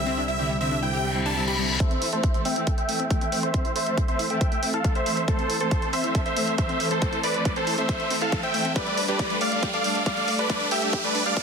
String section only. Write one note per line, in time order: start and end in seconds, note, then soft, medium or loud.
0.06 0.21 D3 medium
0.06 0.21 G3 medium
0.06 0.21 C4 medium
0.06 0.21 E4 medium
0.39 0.54 D3 medium
0.39 0.54 G3 medium
0.39 0.54 C4 medium
0.39 0.54 E4 medium
0.61 0.76 D3 medium
0.61 0.76 G3 medium
0.61 0.76 C4 medium
0.61 0.76 E4 medium
0.82 0.98 D3 medium
0.82 0.98 G3 medium
0.82 0.97 C4 medium
0.82 0.98 E4 medium
1.15 1.30 D3 medium
1.15 1.30 G3 medium
1.15 1.30 C4 medium
1.15 1.30 E4 medium
1.37 1.52 D3 medium
1.37 1.52 G3 medium
1.37 1.52 C4 medium
1.37 1.52 E4 medium
1.58 1.74 D3 medium
1.58 1.74 G3 medium
1.58 1.74 C4 medium
1.58 1.74 E4 medium
1.80 1.95 E3 medium
1.80 1.95 A3 medium
1.80 1.95 C4 medium
1.80 1.95 A4 medium
2.12 2.28 E3 medium
2.12 2.28 A3 medium
2.12 2.28 C4 medium
2.12 2.28 A4 medium
2.34 2.50 E3 medium
2.34 2.50 A3 medium
2.34 2.50 C4 medium
2.34 2.50 A4 medium
2.56 2.71 E3 medium
2.56 2.71 A3 medium
2.56 2.71 C4 medium
2.56 2.71 A4 medium
2.89 3.04 E3 medium
2.89 3.04 A3 medium
2.89 3.04 C4 medium
2.89 3.04 A4 medium
3.10 3.26 E3 medium
3.10 3.26 A3 medium
3.10 3.26 C4 medium
3.10 3.26 A4 medium
3.32 3.48 E3 medium
3.32 3.48 A3 medium
3.32 3.48 C4 medium
3.32 3.48 A4 medium
3.54 3.69 E3 medium
3.54 3.69 A3 medium
3.54 3.69 C4 medium
3.54 3.69 A4 medium
3.87 4.02 E3 medium
3.87 4.02 A3 medium
3.87 4.02 C4 medium
3.87 4.02 A4 medium
4.08 4.24 E3 medium
4.08 4.24 A3 medium
4.08 4.24 C4 medium
4.08 4.24 A4 loud
4.30 4.45 E3 medium
4.30 4.45 A3 medium
4.30 4.45 C4 medium
4.30 4.45 A4 medium
4.63 4.78 E3 medium
4.63 4.78 A3 medium
4.63 4.78 C4 medium
4.63 4.78 A4 medium
4.84 5.00 E3 medium
4.84 5.00 A3 medium
4.84 5.00 C4 medium
4.84 5.00 A4 medium
5.06 5.22 E3 medium
5.06 5.21 A3 medium
5.06 5.22 C4 medium
5.06 5.22 A4 medium
5.28 5.43 E3 medium
5.28 5.43 A3 medium
5.28 5.43 C4 medium
5.28 5.43 A4 medium
5.61 5.76 E3 medium
5.61 5.76 A3 medium
5.61 5.76 C4 medium
5.61 5.76 A4 medium
5.82 5.98 E3 medium
5.82 5.97 A3 medium
5.82 5.98 C4 medium
5.82 5.97 A4 medium
6.04 6.20 E3 medium
6.04 6.20 A3 medium
6.04 6.20 C4 medium
6.04 6.20 A4 medium
6.37 6.52 E3 medium
6.37 6.52 A3 medium
6.37 6.52 C4 medium
6.37 6.52 A4 medium
6.58 6.74 E3 medium
6.58 6.74 A3 medium
6.58 6.74 C4 medium
6.58 6.74 A4 medium
6.80 6.95 E3 medium
6.80 6.95 A3 medium
6.80 6.95 C4 medium
6.80 6.95 A4 medium
7.02 7.17 E3 medium
7.02 7.17 A3 medium
7.02 7.17 C4 medium
7.02 7.17 A4 medium
7.35 7.50 E3 medium
7.35 7.50 A3 medium
7.35 7.50 C4 medium
7.35 7.50 A4 medium
7.56 7.71 E3 medium
7.56 7.71 A3 loud
7.56 7.71 C4 medium
7.56 7.71 A4 medium
7.78 7.93 E3 medium
7.78 7.93 A3 medium
7.78 7.93 C4 medium
7.78 7.93 A4 medium
8.11 8.26 E3 medium
8.11 8.26 A3 medium
8.11 8.26 C4 medium
8.11 8.26 A4 medium
8.32 8.48 E3 medium
8.32 8.48 A3 medium
8.32 8.48 C4 medium
8.32 8.48 A4 medium
8.54 8.69 E3 medium
8.54 8.69 A3 medium
8.54 8.69 C4 loud
8.54 8.69 A4 medium
8.76 8.91 G3 medium
8.76 8.91 A3 medium
8.76 8.91 D4 medium
8.76 8.91 A4 medium
9.08 9.24 G3 medium
9.08 9.24 A3 medium
9.08 9.24 D4 medium
9.08 9.24 A4 medium
9.30 9.45 G3 medium
9.30 9.45 A3 medium
9.30 9.45 D4 medium
9.30 9.45 A4 medium
9.52 9.67 G3 medium
9.52 9.67 A3 medium
9.52 9.67 D4 medium
9.52 9.67 A4 medium
9.84 10.00 G3 medium
9.84 10.00 A3 medium
9.84 10.00 D4 medium
9.84 10.00 A4 medium
10.06 10.21 G3 medium
10.06 10.21 A3 medium
10.06 10.21 D4 medium
10.06 10.21 A4 medium
10.28 10.43 G3 medium
10.28 10.43 A3 medium
10.28 10.43 D4 medium
10.28 10.43 A4 medium
10.49 10.65 G3 medium
10.49 10.65 A3 medium
10.49 10.65 D4 medium
10.49 10.65 A4 medium
10.82 10.98 G3 medium
10.82 10.98 A3 medium
10.82 10.98 D4 medium
10.82 10.98 A4 medium
11.04 11.19 G3 loud
11.04 11.19 A3 loud
11.04 11.19 D4 loud
11.04 11.19 A4 loud
11.26 11.41 G3 medium
11.26 11.41 A3 medium
11.26 11.41 D4 medium
11.26 11.41 A4 medium